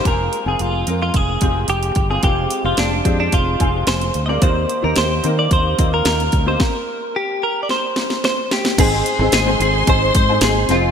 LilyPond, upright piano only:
<<
  \new Staff \with { instrumentName = "Upright piano" } { \time 4/4 \key f \dorian \tempo 4 = 110 <aes c' f' aes'>8 r16 <aes c' f' aes'>8 r16 <aes c' f' bes'>8. r16 <aes c' f' g'>4 r16 <aes c' f' aes'>16 | <aes c' f' c''>8 r16 <aes c' f' g'>8 r16 <aes c' f' g'>8. r16 <aes c' f' aes'>4 r16 <aes c' f' bes'>16 | <bes c' ees' g'>8 r16 <bes c' ees' g'>8 r16 <bes c' ees' bes'>8. r16 <bes c' ees' f'>4 r16 <bes c' ees' g'>16 | r1 |
<aes c' ees' aes' c''>8 r16 <aes c' ees' aes' c''>8 <aes c' ees' aes' c''>8 r16 <aes c' ees' aes' c''>8 r16 <aes c' ees' aes' c''>8 r16 <aes c' ees' aes' c''>8 | }
  \new Staff \with { instrumentName = "Upright piano" } { \clef bass \time 4/4 \key f \dorian r1 | r1 | ees4. r2 r8 | r1 |
aes,4. r2 r8 | }
>>